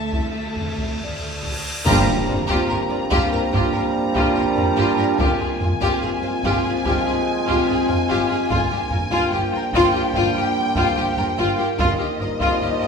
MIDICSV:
0, 0, Header, 1, 13, 480
1, 0, Start_track
1, 0, Tempo, 859599
1, 1037, Time_signature, 4, 2, 24, 8
1, 1037, Tempo, 833333
1, 3917, Tempo, 820793
1, 7436, End_track
2, 0, Start_track
2, 0, Title_t, "Violin section"
2, 0, Program_c, 0, 48
2, 0, Note_on_c, 0, 81, 50
2, 900, Note_off_c, 0, 81, 0
2, 1034, Note_on_c, 0, 82, 78
2, 2935, Note_off_c, 0, 82, 0
2, 2966, Note_on_c, 0, 80, 67
2, 5340, Note_off_c, 0, 80, 0
2, 5366, Note_on_c, 0, 79, 70
2, 6801, Note_off_c, 0, 79, 0
2, 6803, Note_on_c, 0, 75, 70
2, 7436, Note_off_c, 0, 75, 0
2, 7436, End_track
3, 0, Start_track
3, 0, Title_t, "Vibraphone"
3, 0, Program_c, 1, 11
3, 0, Control_c, 1, 64, 127
3, 577, Note_on_c, 1, 74, 44
3, 1023, Note_off_c, 1, 74, 0
3, 1047, Control_c, 1, 64, 0
3, 1139, Control_c, 1, 64, 127
3, 1284, Note_on_c, 1, 72, 43
3, 1287, Note_on_c, 1, 60, 32
3, 2490, Note_on_c, 1, 58, 38
3, 2492, Note_on_c, 1, 70, 50
3, 2699, Note_off_c, 1, 72, 0
3, 2700, Note_off_c, 1, 60, 0
3, 2971, Control_c, 1, 64, 0
3, 3067, Control_c, 1, 64, 127
3, 3899, Note_off_c, 1, 58, 0
3, 3900, Note_off_c, 1, 70, 0
3, 4891, Control_c, 1, 64, 0
3, 4976, Control_c, 1, 64, 127
3, 6568, Note_on_c, 1, 70, 47
3, 6809, Control_c, 1, 64, 0
3, 6906, Control_c, 1, 64, 127
3, 7436, Note_off_c, 1, 70, 0
3, 7436, End_track
4, 0, Start_track
4, 0, Title_t, "Violin section"
4, 0, Program_c, 2, 48
4, 0, Note_on_c, 2, 76, 50
4, 898, Note_off_c, 2, 76, 0
4, 1031, Note_on_c, 2, 67, 82
4, 1146, Note_off_c, 2, 67, 0
4, 1153, Note_on_c, 2, 70, 46
4, 1199, Note_off_c, 2, 70, 0
4, 1266, Note_on_c, 2, 74, 42
4, 1312, Note_off_c, 2, 74, 0
4, 1390, Note_on_c, 2, 67, 82
4, 1506, Note_off_c, 2, 67, 0
4, 1517, Note_on_c, 2, 70, 50
4, 1563, Note_off_c, 2, 70, 0
4, 1632, Note_on_c, 2, 74, 44
4, 1678, Note_off_c, 2, 74, 0
4, 1754, Note_on_c, 2, 67, 81
4, 1868, Note_off_c, 2, 67, 0
4, 1877, Note_on_c, 2, 70, 52
4, 1923, Note_off_c, 2, 70, 0
4, 1995, Note_on_c, 2, 67, 61
4, 2109, Note_off_c, 2, 67, 0
4, 2114, Note_on_c, 2, 70, 56
4, 2160, Note_off_c, 2, 70, 0
4, 2350, Note_on_c, 2, 67, 59
4, 2466, Note_off_c, 2, 67, 0
4, 2470, Note_on_c, 2, 70, 56
4, 2516, Note_off_c, 2, 70, 0
4, 2590, Note_on_c, 2, 74, 49
4, 2636, Note_off_c, 2, 74, 0
4, 2708, Note_on_c, 2, 67, 68
4, 2825, Note_off_c, 2, 67, 0
4, 2829, Note_on_c, 2, 70, 57
4, 2875, Note_off_c, 2, 70, 0
4, 2955, Note_on_c, 2, 67, 65
4, 3069, Note_off_c, 2, 67, 0
4, 3075, Note_on_c, 2, 68, 41
4, 3121, Note_off_c, 2, 68, 0
4, 3188, Note_on_c, 2, 72, 44
4, 3234, Note_off_c, 2, 72, 0
4, 3311, Note_on_c, 2, 67, 75
4, 3425, Note_off_c, 2, 67, 0
4, 3428, Note_on_c, 2, 68, 53
4, 3474, Note_off_c, 2, 68, 0
4, 3550, Note_on_c, 2, 72, 47
4, 3596, Note_off_c, 2, 72, 0
4, 3679, Note_on_c, 2, 67, 70
4, 3789, Note_off_c, 2, 67, 0
4, 3795, Note_on_c, 2, 68, 45
4, 3841, Note_off_c, 2, 68, 0
4, 3910, Note_on_c, 2, 67, 58
4, 4027, Note_off_c, 2, 67, 0
4, 4030, Note_on_c, 2, 68, 56
4, 4077, Note_off_c, 2, 68, 0
4, 4274, Note_on_c, 2, 67, 60
4, 4390, Note_off_c, 2, 67, 0
4, 4401, Note_on_c, 2, 68, 63
4, 4447, Note_off_c, 2, 68, 0
4, 4516, Note_on_c, 2, 72, 50
4, 4563, Note_off_c, 2, 72, 0
4, 4637, Note_on_c, 2, 67, 67
4, 4751, Note_off_c, 2, 67, 0
4, 4759, Note_on_c, 2, 68, 53
4, 4806, Note_off_c, 2, 68, 0
4, 4879, Note_on_c, 2, 65, 73
4, 4991, Note_off_c, 2, 65, 0
4, 5001, Note_on_c, 2, 67, 49
4, 5048, Note_off_c, 2, 67, 0
4, 5116, Note_on_c, 2, 70, 42
4, 5163, Note_off_c, 2, 70, 0
4, 5233, Note_on_c, 2, 65, 76
4, 5348, Note_off_c, 2, 65, 0
4, 5364, Note_on_c, 2, 67, 59
4, 5410, Note_off_c, 2, 67, 0
4, 5493, Note_on_c, 2, 70, 52
4, 5538, Note_off_c, 2, 70, 0
4, 5609, Note_on_c, 2, 65, 85
4, 5715, Note_off_c, 2, 65, 0
4, 5724, Note_on_c, 2, 67, 57
4, 5771, Note_off_c, 2, 67, 0
4, 5849, Note_on_c, 2, 65, 73
4, 5955, Note_off_c, 2, 65, 0
4, 5973, Note_on_c, 2, 67, 59
4, 6018, Note_off_c, 2, 67, 0
4, 6201, Note_on_c, 2, 65, 74
4, 6311, Note_off_c, 2, 65, 0
4, 6318, Note_on_c, 2, 67, 68
4, 6365, Note_off_c, 2, 67, 0
4, 6442, Note_on_c, 2, 70, 61
4, 6489, Note_off_c, 2, 70, 0
4, 6561, Note_on_c, 2, 65, 73
4, 6671, Note_off_c, 2, 65, 0
4, 6683, Note_on_c, 2, 67, 60
4, 6730, Note_off_c, 2, 67, 0
4, 6801, Note_on_c, 2, 65, 76
4, 6911, Note_off_c, 2, 65, 0
4, 6918, Note_on_c, 2, 67, 57
4, 6965, Note_off_c, 2, 67, 0
4, 7044, Note_on_c, 2, 70, 46
4, 7091, Note_off_c, 2, 70, 0
4, 7165, Note_on_c, 2, 65, 77
4, 7272, Note_off_c, 2, 65, 0
4, 7288, Note_on_c, 2, 67, 53
4, 7333, Note_off_c, 2, 67, 0
4, 7398, Note_on_c, 2, 70, 51
4, 7436, Note_off_c, 2, 70, 0
4, 7436, End_track
5, 0, Start_track
5, 0, Title_t, "Viola section"
5, 0, Program_c, 3, 48
5, 0, Note_on_c, 3, 69, 44
5, 898, Note_off_c, 3, 69, 0
5, 1040, Note_on_c, 3, 65, 82
5, 1151, Note_off_c, 3, 65, 0
5, 1160, Note_on_c, 3, 65, 49
5, 1206, Note_off_c, 3, 65, 0
5, 1286, Note_on_c, 3, 65, 43
5, 1332, Note_off_c, 3, 65, 0
5, 1409, Note_on_c, 3, 65, 69
5, 1516, Note_off_c, 3, 65, 0
5, 1530, Note_on_c, 3, 65, 44
5, 1576, Note_off_c, 3, 65, 0
5, 1646, Note_on_c, 3, 65, 47
5, 1692, Note_off_c, 3, 65, 0
5, 1767, Note_on_c, 3, 65, 62
5, 1875, Note_off_c, 3, 65, 0
5, 1889, Note_on_c, 3, 65, 52
5, 1935, Note_off_c, 3, 65, 0
5, 2009, Note_on_c, 3, 65, 64
5, 2116, Note_off_c, 3, 65, 0
5, 2129, Note_on_c, 3, 65, 50
5, 2175, Note_off_c, 3, 65, 0
5, 2364, Note_on_c, 3, 65, 74
5, 2473, Note_off_c, 3, 65, 0
5, 2488, Note_on_c, 3, 65, 50
5, 2534, Note_off_c, 3, 65, 0
5, 2606, Note_on_c, 3, 65, 52
5, 2652, Note_off_c, 3, 65, 0
5, 2719, Note_on_c, 3, 65, 74
5, 2831, Note_off_c, 3, 65, 0
5, 2844, Note_on_c, 3, 65, 47
5, 2890, Note_off_c, 3, 65, 0
5, 2960, Note_on_c, 3, 65, 71
5, 3072, Note_off_c, 3, 65, 0
5, 3086, Note_on_c, 3, 65, 53
5, 3132, Note_off_c, 3, 65, 0
5, 3216, Note_on_c, 3, 65, 42
5, 3260, Note_off_c, 3, 65, 0
5, 3318, Note_on_c, 3, 65, 69
5, 3429, Note_off_c, 3, 65, 0
5, 3442, Note_on_c, 3, 65, 48
5, 3488, Note_off_c, 3, 65, 0
5, 3561, Note_on_c, 3, 65, 43
5, 3607, Note_off_c, 3, 65, 0
5, 3678, Note_on_c, 3, 65, 72
5, 3789, Note_off_c, 3, 65, 0
5, 3800, Note_on_c, 3, 65, 51
5, 3846, Note_off_c, 3, 65, 0
5, 3916, Note_on_c, 3, 65, 64
5, 4030, Note_off_c, 3, 65, 0
5, 4039, Note_on_c, 3, 65, 58
5, 4086, Note_off_c, 3, 65, 0
5, 4274, Note_on_c, 3, 65, 76
5, 4389, Note_off_c, 3, 65, 0
5, 4399, Note_on_c, 3, 65, 56
5, 4446, Note_off_c, 3, 65, 0
5, 4516, Note_on_c, 3, 65, 57
5, 4563, Note_off_c, 3, 65, 0
5, 4632, Note_on_c, 3, 65, 78
5, 4746, Note_off_c, 3, 65, 0
5, 4753, Note_on_c, 3, 65, 57
5, 4800, Note_off_c, 3, 65, 0
5, 4868, Note_on_c, 3, 65, 66
5, 4984, Note_off_c, 3, 65, 0
5, 4991, Note_on_c, 3, 65, 44
5, 5038, Note_off_c, 3, 65, 0
5, 5117, Note_on_c, 3, 65, 47
5, 5164, Note_off_c, 3, 65, 0
5, 5236, Note_on_c, 3, 65, 90
5, 5349, Note_off_c, 3, 65, 0
5, 5358, Note_on_c, 3, 65, 62
5, 5405, Note_off_c, 3, 65, 0
5, 5475, Note_on_c, 3, 65, 57
5, 5522, Note_off_c, 3, 65, 0
5, 5608, Note_on_c, 3, 65, 82
5, 5713, Note_off_c, 3, 65, 0
5, 5720, Note_on_c, 3, 65, 59
5, 5767, Note_off_c, 3, 65, 0
5, 5846, Note_on_c, 3, 65, 73
5, 5953, Note_off_c, 3, 65, 0
5, 5965, Note_on_c, 3, 65, 59
5, 6011, Note_off_c, 3, 65, 0
5, 6200, Note_on_c, 3, 65, 77
5, 6311, Note_off_c, 3, 65, 0
5, 6320, Note_on_c, 3, 65, 59
5, 6367, Note_off_c, 3, 65, 0
5, 6447, Note_on_c, 3, 65, 56
5, 6493, Note_off_c, 3, 65, 0
5, 6563, Note_on_c, 3, 65, 86
5, 6673, Note_off_c, 3, 65, 0
5, 6683, Note_on_c, 3, 65, 60
5, 6729, Note_off_c, 3, 65, 0
5, 6810, Note_on_c, 3, 65, 72
5, 6916, Note_off_c, 3, 65, 0
5, 6923, Note_on_c, 3, 65, 53
5, 6970, Note_off_c, 3, 65, 0
5, 7040, Note_on_c, 3, 65, 45
5, 7086, Note_off_c, 3, 65, 0
5, 7167, Note_on_c, 3, 65, 73
5, 7273, Note_off_c, 3, 65, 0
5, 7285, Note_on_c, 3, 65, 48
5, 7331, Note_off_c, 3, 65, 0
5, 7401, Note_on_c, 3, 65, 56
5, 7436, Note_off_c, 3, 65, 0
5, 7436, End_track
6, 0, Start_track
6, 0, Title_t, "French horn section"
6, 0, Program_c, 4, 60
6, 75, Note_on_c, 4, 64, 44
6, 78, Note_on_c, 4, 57, 46
6, 255, Note_off_c, 4, 64, 0
6, 257, Note_off_c, 4, 57, 0
6, 1033, Note_on_c, 4, 58, 84
6, 1037, Note_on_c, 4, 62, 91
6, 2935, Note_off_c, 4, 58, 0
6, 2937, Note_off_c, 4, 62, 0
6, 2961, Note_on_c, 4, 60, 75
6, 2962, Note_on_c, 4, 65, 69
6, 4859, Note_off_c, 4, 60, 0
6, 4859, Note_off_c, 4, 65, 0
6, 4884, Note_on_c, 4, 62, 76
6, 4885, Note_on_c, 4, 58, 71
6, 6708, Note_off_c, 4, 58, 0
6, 6708, Note_off_c, 4, 62, 0
6, 6808, Note_on_c, 4, 58, 81
6, 6810, Note_on_c, 4, 63, 69
6, 7436, Note_off_c, 4, 58, 0
6, 7436, Note_off_c, 4, 63, 0
6, 7436, End_track
7, 0, Start_track
7, 0, Title_t, "Trombone section"
7, 0, Program_c, 5, 61
7, 1038, Note_on_c, 5, 53, 85
7, 1041, Note_on_c, 5, 55, 94
7, 2937, Note_off_c, 5, 53, 0
7, 2938, Note_off_c, 5, 55, 0
7, 2961, Note_on_c, 5, 56, 77
7, 2962, Note_on_c, 5, 53, 78
7, 4859, Note_off_c, 5, 53, 0
7, 4859, Note_off_c, 5, 56, 0
7, 4883, Note_on_c, 5, 55, 79
7, 4887, Note_on_c, 5, 53, 74
7, 6705, Note_off_c, 5, 53, 0
7, 6705, Note_off_c, 5, 55, 0
7, 6804, Note_on_c, 5, 53, 88
7, 6808, Note_on_c, 5, 55, 89
7, 7436, Note_off_c, 5, 53, 0
7, 7436, Note_off_c, 5, 55, 0
7, 7436, End_track
8, 0, Start_track
8, 0, Title_t, "Cello section"
8, 0, Program_c, 6, 48
8, 0, Note_on_c, 6, 57, 58
8, 537, Note_off_c, 6, 57, 0
8, 1041, Note_on_c, 6, 43, 77
8, 1151, Note_off_c, 6, 43, 0
8, 1163, Note_on_c, 6, 43, 47
8, 1209, Note_off_c, 6, 43, 0
8, 1280, Note_on_c, 6, 43, 45
8, 1326, Note_off_c, 6, 43, 0
8, 1402, Note_on_c, 6, 43, 68
8, 1449, Note_off_c, 6, 43, 0
8, 1521, Note_on_c, 6, 43, 46
8, 1567, Note_off_c, 6, 43, 0
8, 1639, Note_on_c, 6, 43, 50
8, 1685, Note_off_c, 6, 43, 0
8, 1756, Note_on_c, 6, 43, 72
8, 1802, Note_off_c, 6, 43, 0
8, 1878, Note_on_c, 6, 43, 51
8, 1924, Note_off_c, 6, 43, 0
8, 1995, Note_on_c, 6, 43, 81
8, 2041, Note_off_c, 6, 43, 0
8, 2119, Note_on_c, 6, 43, 50
8, 2165, Note_off_c, 6, 43, 0
8, 2352, Note_on_c, 6, 43, 73
8, 2399, Note_off_c, 6, 43, 0
8, 2472, Note_on_c, 6, 43, 56
8, 2518, Note_off_c, 6, 43, 0
8, 2590, Note_on_c, 6, 43, 53
8, 2636, Note_off_c, 6, 43, 0
8, 2712, Note_on_c, 6, 43, 76
8, 2758, Note_off_c, 6, 43, 0
8, 2830, Note_on_c, 6, 43, 56
8, 2876, Note_off_c, 6, 43, 0
8, 2950, Note_on_c, 6, 43, 68
8, 2996, Note_off_c, 6, 43, 0
8, 3071, Note_on_c, 6, 43, 45
8, 3117, Note_off_c, 6, 43, 0
8, 3192, Note_on_c, 6, 43, 43
8, 3238, Note_off_c, 6, 43, 0
8, 3309, Note_on_c, 6, 43, 67
8, 3355, Note_off_c, 6, 43, 0
8, 3432, Note_on_c, 6, 43, 50
8, 3478, Note_off_c, 6, 43, 0
8, 3549, Note_on_c, 6, 43, 53
8, 3595, Note_off_c, 6, 43, 0
8, 3672, Note_on_c, 6, 43, 76
8, 3718, Note_off_c, 6, 43, 0
8, 3796, Note_on_c, 6, 43, 55
8, 3842, Note_off_c, 6, 43, 0
8, 3916, Note_on_c, 6, 43, 79
8, 3963, Note_off_c, 6, 43, 0
8, 4041, Note_on_c, 6, 43, 59
8, 4088, Note_off_c, 6, 43, 0
8, 4280, Note_on_c, 6, 43, 72
8, 4327, Note_off_c, 6, 43, 0
8, 4398, Note_on_c, 6, 43, 54
8, 4445, Note_off_c, 6, 43, 0
8, 4522, Note_on_c, 6, 43, 52
8, 4569, Note_off_c, 6, 43, 0
8, 4640, Note_on_c, 6, 43, 71
8, 4687, Note_off_c, 6, 43, 0
8, 4762, Note_on_c, 6, 43, 61
8, 4809, Note_off_c, 6, 43, 0
8, 4882, Note_on_c, 6, 43, 73
8, 4929, Note_off_c, 6, 43, 0
8, 4998, Note_on_c, 6, 43, 55
8, 5045, Note_off_c, 6, 43, 0
8, 5117, Note_on_c, 6, 43, 50
8, 5164, Note_off_c, 6, 43, 0
8, 5241, Note_on_c, 6, 43, 77
8, 5288, Note_off_c, 6, 43, 0
8, 5359, Note_on_c, 6, 43, 55
8, 5405, Note_off_c, 6, 43, 0
8, 5475, Note_on_c, 6, 43, 54
8, 5522, Note_off_c, 6, 43, 0
8, 5593, Note_on_c, 6, 43, 77
8, 5639, Note_off_c, 6, 43, 0
8, 5715, Note_on_c, 6, 43, 51
8, 5761, Note_off_c, 6, 43, 0
8, 5833, Note_on_c, 6, 43, 86
8, 5879, Note_off_c, 6, 43, 0
8, 5957, Note_on_c, 6, 43, 56
8, 6004, Note_off_c, 6, 43, 0
8, 6196, Note_on_c, 6, 43, 84
8, 6243, Note_off_c, 6, 43, 0
8, 6319, Note_on_c, 6, 43, 53
8, 6366, Note_off_c, 6, 43, 0
8, 6439, Note_on_c, 6, 43, 60
8, 6486, Note_off_c, 6, 43, 0
8, 6558, Note_on_c, 6, 43, 74
8, 6605, Note_off_c, 6, 43, 0
8, 6679, Note_on_c, 6, 43, 58
8, 6725, Note_off_c, 6, 43, 0
8, 6794, Note_on_c, 6, 43, 76
8, 6840, Note_off_c, 6, 43, 0
8, 6915, Note_on_c, 6, 43, 51
8, 6962, Note_off_c, 6, 43, 0
8, 7038, Note_on_c, 6, 43, 53
8, 7085, Note_off_c, 6, 43, 0
8, 7157, Note_on_c, 6, 43, 74
8, 7203, Note_off_c, 6, 43, 0
8, 7281, Note_on_c, 6, 43, 48
8, 7327, Note_off_c, 6, 43, 0
8, 7394, Note_on_c, 6, 43, 58
8, 7436, Note_off_c, 6, 43, 0
8, 7436, End_track
9, 0, Start_track
9, 0, Title_t, "Timpani"
9, 0, Program_c, 7, 47
9, 1037, Note_on_c, 7, 43, 87
9, 1736, Note_off_c, 7, 43, 0
9, 7436, End_track
10, 0, Start_track
10, 0, Title_t, "Double bass section"
10, 0, Program_c, 8, 48
10, 0, Note_on_c, 8, 38, 52
10, 899, Note_off_c, 8, 38, 0
10, 1040, Note_on_c, 8, 31, 78
10, 1151, Note_off_c, 8, 31, 0
10, 1280, Note_on_c, 8, 31, 47
10, 1326, Note_off_c, 8, 31, 0
10, 1522, Note_on_c, 8, 31, 53
10, 1568, Note_off_c, 8, 31, 0
10, 1758, Note_on_c, 8, 31, 73
10, 1804, Note_off_c, 8, 31, 0
10, 2000, Note_on_c, 8, 31, 69
10, 2047, Note_off_c, 8, 31, 0
10, 2485, Note_on_c, 8, 31, 53
10, 2531, Note_off_c, 8, 31, 0
10, 2720, Note_on_c, 8, 31, 64
10, 2766, Note_off_c, 8, 31, 0
10, 2959, Note_on_c, 8, 31, 72
10, 3005, Note_off_c, 8, 31, 0
10, 3200, Note_on_c, 8, 31, 44
10, 3246, Note_off_c, 8, 31, 0
10, 3436, Note_on_c, 8, 31, 56
10, 3482, Note_off_c, 8, 31, 0
10, 3675, Note_on_c, 8, 31, 76
10, 3722, Note_off_c, 8, 31, 0
10, 3916, Note_on_c, 8, 31, 69
10, 3963, Note_off_c, 8, 31, 0
10, 4402, Note_on_c, 8, 31, 51
10, 4449, Note_off_c, 8, 31, 0
10, 4643, Note_on_c, 8, 31, 71
10, 4690, Note_off_c, 8, 31, 0
10, 4884, Note_on_c, 8, 31, 77
10, 4931, Note_off_c, 8, 31, 0
10, 5121, Note_on_c, 8, 31, 57
10, 5168, Note_off_c, 8, 31, 0
10, 5368, Note_on_c, 8, 31, 57
10, 5414, Note_off_c, 8, 31, 0
10, 5605, Note_on_c, 8, 31, 77
10, 5651, Note_off_c, 8, 31, 0
10, 5849, Note_on_c, 8, 31, 78
10, 5895, Note_off_c, 8, 31, 0
10, 6325, Note_on_c, 8, 31, 65
10, 6372, Note_off_c, 8, 31, 0
10, 6573, Note_on_c, 8, 31, 74
10, 6618, Note_off_c, 8, 31, 0
10, 6807, Note_on_c, 8, 31, 82
10, 6853, Note_off_c, 8, 31, 0
10, 7044, Note_on_c, 8, 31, 57
10, 7090, Note_off_c, 8, 31, 0
10, 7286, Note_on_c, 8, 31, 61
10, 7332, Note_off_c, 8, 31, 0
10, 7436, End_track
11, 0, Start_track
11, 0, Title_t, "Cymbal swell"
11, 0, Program_c, 10, 119
11, 0, Note_on_c, 10, 60, 46
11, 1037, Note_off_c, 10, 60, 0
11, 7436, End_track
12, 0, Start_track
12, 0, Title_t, "Impact"
12, 0, Program_c, 11, 103
12, 1042, Note_on_c, 11, 60, 59
12, 2962, Note_off_c, 11, 60, 0
12, 7436, End_track
13, 0, Start_track
13, 0, Title_t, "Taiko and cinematic ensemble drums"
13, 72, Note_on_c, 9, 41, 67
13, 128, Note_off_c, 9, 41, 0
13, 316, Note_on_c, 9, 43, 53
13, 372, Note_off_c, 9, 43, 0
13, 435, Note_on_c, 9, 41, 61
13, 491, Note_off_c, 9, 41, 0
13, 559, Note_on_c, 9, 43, 45
13, 615, Note_off_c, 9, 43, 0
13, 797, Note_on_c, 9, 41, 62
13, 853, Note_off_c, 9, 41, 0
13, 1036, Note_on_c, 9, 41, 84
13, 1093, Note_off_c, 9, 41, 0
13, 1283, Note_on_c, 9, 43, 58
13, 1340, Note_off_c, 9, 43, 0
13, 1403, Note_on_c, 9, 41, 81
13, 1460, Note_off_c, 9, 41, 0
13, 1762, Note_on_c, 9, 41, 81
13, 1820, Note_off_c, 9, 41, 0
13, 2000, Note_on_c, 9, 41, 73
13, 2058, Note_off_c, 9, 41, 0
13, 2359, Note_on_c, 9, 41, 77
13, 2417, Note_off_c, 9, 41, 0
13, 2599, Note_on_c, 9, 43, 48
13, 2657, Note_off_c, 9, 43, 0
13, 2958, Note_on_c, 9, 41, 81
13, 3016, Note_off_c, 9, 41, 0
13, 3196, Note_on_c, 9, 43, 58
13, 3254, Note_off_c, 9, 43, 0
13, 3317, Note_on_c, 9, 41, 78
13, 3374, Note_off_c, 9, 41, 0
13, 3677, Note_on_c, 9, 41, 78
13, 3735, Note_off_c, 9, 41, 0
13, 3916, Note_on_c, 9, 41, 75
13, 3974, Note_off_c, 9, 41, 0
13, 4280, Note_on_c, 9, 41, 72
13, 4339, Note_off_c, 9, 41, 0
13, 4523, Note_on_c, 9, 43, 44
13, 4581, Note_off_c, 9, 43, 0
13, 4881, Note_on_c, 9, 41, 80
13, 4939, Note_off_c, 9, 41, 0
13, 5119, Note_on_c, 9, 43, 50
13, 5178, Note_off_c, 9, 43, 0
13, 5237, Note_on_c, 9, 41, 74
13, 5296, Note_off_c, 9, 41, 0
13, 5598, Note_on_c, 9, 41, 78
13, 5656, Note_off_c, 9, 41, 0
13, 5836, Note_on_c, 9, 41, 74
13, 5895, Note_off_c, 9, 41, 0
13, 6195, Note_on_c, 9, 41, 69
13, 6253, Note_off_c, 9, 41, 0
13, 6441, Note_on_c, 9, 43, 45
13, 6499, Note_off_c, 9, 43, 0
13, 6800, Note_on_c, 9, 41, 79
13, 6858, Note_off_c, 9, 41, 0
13, 7158, Note_on_c, 9, 41, 77
13, 7216, Note_off_c, 9, 41, 0
13, 7436, End_track
0, 0, End_of_file